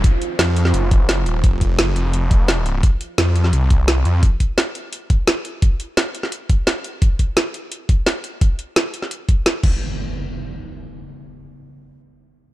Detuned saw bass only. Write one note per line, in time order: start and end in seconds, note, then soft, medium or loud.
0.39 0.73 F2 loud
0.74 1.25 F#1 medium
1.26 1.42 D#1 medium
1.44 1.77 F1 medium
1.79 1.95 F#1 loud
1.96 2.82 F1 loud
3.18 3.52 F2 medium
3.53 4.04 C2 medium
4.05 4.21 F2 medium